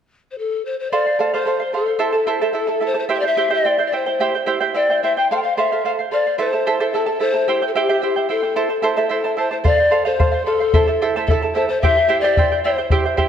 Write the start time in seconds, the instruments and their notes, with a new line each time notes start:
0.31 pan flute C5
0.38 pan flute A4
0.65 pan flute C5
0.79 pan flute C5
0.91 charango A4 C5 F5, pan flute D5
1.06 charango C5 F5
1.19 charango A4 C5 F5
1.34 charango A4 C5 F5, pan flute C5
1.46 charango A4 C5 F5
1.60 charango C5 F5
1.73 charango A4 C5 F5, pan flute A4
1.86 charango C5 F5
1.99 charango E4 A4 C5 E5 A5
2.13 charango E4 A4 A5
2.27 charango E4 A4 C5 E5 A5
2.41 charango E4 A4 C5 E5 A5
2.53 charango E4 A4 E5 A5, pan flute A4
2.67 charango E4 A4 A5
2.80 charango E4 A4 E5 A5
2.86 pan flute C5
2.94 charango E4 A4 A5
2.99 pan flute C5
3.09 charango E4 G4 C5 E5 G5
3.13 pan flute E5
3.19 charango C5 G5, pan flute D5
3.24 charango E4, pan flute E5
3.37 charango E4 G4 C5 E5 G5
3.50 charango E4 G4 C5 E5 G5, pan flute D5
3.65 charango E4 C5 E5 G5
3.78 charango E4 C5 G5
3.86 pan flute D5
3.92 charango E4 C5 E5 G5, pan flute C5
4.06 charango E4 C5 G5
4.20 charango E4 G4 C5 E5 G5
4.35 charango E4 C5 G5
4.46 charango E4 G4 C5 E5 G5
4.60 charango E4 G4 C5 E5 G5
4.75 charango E4 C5 E5 G5, pan flute D5
4.90 charango E4 C5 G5
5.03 charango E4 C5 E5 G5, pan flute E5
5.17 charango E4 C5 G5, pan flute G5
5.30 charango A4 C5 F5, pan flute F5
5.36 pan flute G5
5.42 charango C5 F5, pan flute F5
5.57 charango A4 C5 F5, pan flute E5
5.72 charango A4 C5 F5
5.85 charango A4 C5 F5, pan flute F5
5.99 charango C5 F5
6.11 charango A4 C5 F5, pan flute D5
6.26 charango C5 F5
6.38 charango E4 A4 C5 E5 A5, pan flute C5
6.53 charango E4 A4 A5
6.67 charango E4 A4 C5 E5 A5
6.80 charango E4 A4 C5 E5 A5
6.92 charango E4 A4 E5 A5, pan flute A4
7.06 charango E4 A4 A5
7.20 charango E4 A4 E5 A5, pan flute C5
7.34 charango E4 A4 A5
7.48 charango E4 G4 C5 E5 G5
7.62 charango E4 C5 G5
7.67 pan flute A4
7.74 charango E4 G4 C5 E5 G5, pan flute G4
7.89 charango E4 G4 C5 E5 G5
8.02 charango E4 C5 E5 G5
8.16 charango E4 C5 G5
8.29 charango E4 C5 E5 G5, pan flute A4
8.42 charango E4 C5 G5
8.56 charango E4 A4 C5 E5 A5
8.70 charango E4 C5 A5
8.82 charango E4 A4 C5 E5 A5
8.97 charango E4 A4 C5 E5 A5
9.09 charango E4 C5 E5 A5, pan flute A4
9.24 charango E4 C5 A5
9.37 charango E4 C5 E5 A5, pan flute C5
9.51 charango E4 C5 A5, pan flute C5
9.64 charango A4 C5 F5, pan flute D5, bombo low
9.78 charango C5 F5
9.91 charango A4 C5 F5
10.05 charango A4 C5 F5, pan flute C5
10.19 charango A4 C5 F5, bombo low
10.32 charango C5 F5
10.45 pan flute A4, charango A4 C5 F5
10.60 charango C5 F5
10.74 charango E4 A4 C5 E5 A5, bombo low
10.87 charango E4 A4 A5
11.02 charango E4 A4 C5 E5 A5
11.16 charango E4 A4 C5 E5 A5
11.26 pan flute A4, charango E5, bombo low
11.31 charango E4 A4 A5
11.42 charango E4 A4 A5
11.54 charango E4 A4 E5 A5, pan flute C5
11.68 charango E4 A4 A5, pan flute C5
11.81 charango E4 G4 C5 E5 G5, pan flute E5, bombo low
11.97 charango E4 C5 G5
12.09 charango E4 G4 C5 E5 G5
12.20 charango E4 C5 G5, pan flute D5
12.25 charango G4 E5
12.37 charango E4 C5 E5 G5, bombo low
12.52 charango E4 C5 G5
12.64 charango E4 C5 E5 G5, pan flute C5
12.78 charango E4 C5 G5
12.90 charango E4 G4 C5 E5 G5, bombo low
13.05 charango E4 C5 G5
13.17 charango E4 G4 C5 E5 G5, bombo low